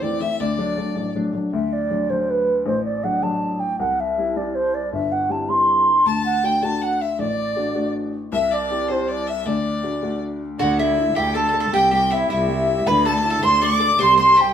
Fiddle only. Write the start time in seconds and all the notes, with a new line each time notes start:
0.02 D5
0.21 E5
0.40 D5
6.06 A5
6.45 G5
6.62 A5
6.81 F#5
7.01 E5
7.20 D5
8.32 E5
8.51 D5
8.88 C5
9.08 D5
9.27 E5
9.46 D5
10.59 F#5
10.70 F#5
10.78 E5
11.15 G5
11.34 A5
11.73 G5
11.92 G5
12.11 E5
12.30 E5
12.87 B5
13.06 A5
13.43 C6
13.62 D6
14.00 C6
14.17 C6
14.36 G5